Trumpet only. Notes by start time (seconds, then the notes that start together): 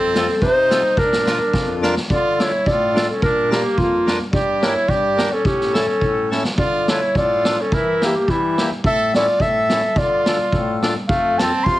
Already playing: C4
0.44 D#4
0.99 D4
2.14 F4
2.44 E4
2.70 F4
3.13 C#4
3.25 D4
3.53 A#3
3.81 A#3
4.35 G4
4.65 E4
4.89 G4
5.32 C#4
5.45 C#4
5.76 C#4
6.59 F4
6.90 E4
7.18 F4
7.61 C#4
7.74 E4
8.04 A#3
8.29 G3
8.86 A4
9.15 F4
9.41 A4
9.97 F4
11.10 A3
11.41 C4
11.66 F4